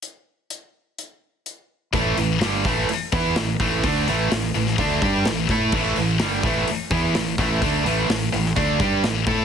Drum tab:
CC |----------------|----------------|----------------|x---------------|
HH |x---x---x---x---|o-o-o-o-o-o-o-o-|o-o-o-o-o-o-o-o-|--o-o-o-o-o-o-o-|
SD |----------------|----o-------o---|----o--o----o-o-|----o-------o-o-|
BD |----------------|o-----o---o---o-|o-------o-o---o-|o-----o---o---o-|

CC |----------------|
HH |o-o-o-o-o-o-o-o-|
SD |----o--o----o---|
BD |o-------o-o---o-|